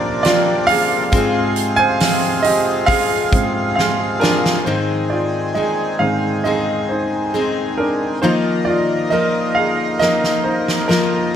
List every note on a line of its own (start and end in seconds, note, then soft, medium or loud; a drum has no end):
0.00 1.15 A#2 medium
0.00 4.63 C3 medium
0.00 0.71 F3 medium
0.00 1.15 F3 medium
0.00 4.62 F3 medium
0.00 0.69 A#3 medium
0.00 1.09 A#3 medium
0.00 0.69 C4 medium
0.00 1.09 D4 medium
0.00 1.14 D4 medium
0.00 0.26 F4 medium
0.00 0.68 F4 medium
0.00 0.23 D5 loud
0.23 0.66 F4 medium
0.23 0.69 D5 medium
0.23 snare loud
0.23 hi-hat pedal medium
0.23 open hi-hat medium
0.67 1.13 A#3 medium
0.67 1.12 C4 medium
0.67 1.12 F4 medium
0.67 1.74 G#4 medium
0.67 1.73 F5 loud
0.67 hi-hat pedal medium
0.67 open hi-hat medium
0.71 1.11 F3 soft
1.12 2.40 G#2 medium
1.12 2.87 G#3 medium
1.12 4.63 G#3 medium
1.12 2.40 G#3 medium
1.12 2.88 C4 medium
1.12 2.40 C4 medium
1.12 4.62 F4 medium
1.12 2.88 F4 medium
1.12 2.89 G#4 medium
1.12 kick loud
1.12 hi-hat pedal medium
1.12 open hi-hat medium
1.56 hi-hat pedal medium
1.56 open hi-hat medium
1.76 2.41 C5 medium
1.76 2.45 G#5 loud
2.00 snare loud
2.00 hi-hat pedal medium
2.00 open hi-hat medium
2.43 2.85 G4 medium
2.43 2.89 D#5 medium
2.43 hi-hat pedal medium
2.43 open hi-hat medium
2.86 4.67 G#3 medium
2.86 4.23 C4 medium
2.86 4.21 F4 medium
2.86 3.73 G#4 medium
2.86 4.21 G#4 medium
2.86 3.74 F5 loud
2.86 kick medium
2.86 hi-hat pedal medium
2.86 open hi-hat medium
3.32 3.73 G#2 soft
3.32 3.73 G#3 soft
3.32 3.73 C4 soft
3.32 kick loud
3.32 hi-hat pedal medium
3.32 open hi-hat medium
3.75 4.40 G#4 medium
3.75 4.39 F5 medium
3.75 snare medium
4.20 4.66 C4 soft
4.20 4.32 D4 medium
4.20 4.67 F4 medium
4.20 4.66 G#4 medium
4.20 4.30 A#4 medium
4.20 snare medium
4.46 snare medium
4.65 5.56 G#2 medium
4.65 8.17 D#3 medium
4.65 8.20 D#3 medium
4.65 5.54 G#3 medium
4.65 8.20 G#3 soft
4.65 8.20 C4 soft
4.65 5.55 C4 medium
4.65 5.08 D#4 soft
4.65 5.56 D#4 medium
4.65 8.20 G#4 medium
4.65 5.56 G#4 medium
4.65 5.07 C5 medium
5.10 5.53 F4 soft
5.10 5.57 D5 medium
5.55 6.44 G#3 soft
5.55 6.45 C4 soft
5.55 6.46 D#4 soft
5.55 5.98 G#4 medium
5.55 6.46 G#4 soft
5.55 6.01 D#5 medium
5.99 8.19 G#2 soft
5.99 8.19 D#3 soft
5.99 7.34 C4 soft
5.99 6.11 G#4 soft
5.99 6.09 F5 medium
6.44 7.33 G#3 soft
6.44 7.34 C4 soft
6.44 7.35 D#4 soft
6.44 6.88 G#4 medium
6.44 7.35 G#4 medium
6.44 6.91 D#5 medium
6.89 7.32 D#4 soft
6.89 7.35 C5 medium
7.33 8.23 G#3 medium
7.33 8.23 C4 medium
7.33 7.76 C4 soft
7.33 8.24 D#4 medium
7.33 7.80 G#4 medium
7.33 8.24 G#4 medium
7.78 8.21 D4 soft
7.78 8.24 A#4 medium
8.22 8.82 D#3 soft
8.22 9.12 D#3 medium
8.22 8.82 F3 soft
8.22 9.10 F3 medium
8.22 11.36 F3 medium
8.22 8.82 A#3 medium
8.22 9.11 A#3 medium
8.22 11.36 A#3 medium
8.22 8.34 D#4 medium
8.22 9.11 D#4 medium
8.22 11.36 D#4 medium
8.22 9.13 F4 medium
8.22 11.36 A#4 medium
8.22 8.32 C5 medium
8.65 9.09 F4 medium
8.65 9.12 D5 medium
9.10 9.99 F3 soft
9.10 10.00 A#3 soft
9.10 10.00 D#4 soft
9.10 10.02 F4 medium
9.10 9.54 A#4 medium
9.10 9.57 D#5 medium
9.55 9.98 G#4 medium
9.55 9.97 F5 medium
9.99 10.88 F3 medium
9.99 10.89 A#3 medium
9.99 10.89 D#4 medium
9.99 10.91 F4 medium
9.99 10.43 A#4 medium
9.99 10.41 D#5 medium
9.99 snare soft
10.24 snare soft
10.44 10.87 D#4 medium
10.44 10.90 C5 medium
10.68 snare medium
10.88 11.36 F3 medium
10.88 11.36 A#3 medium
10.88 11.36 D#4 medium
10.88 11.36 F4 medium
10.88 11.36 A#4 medium
10.88 snare medium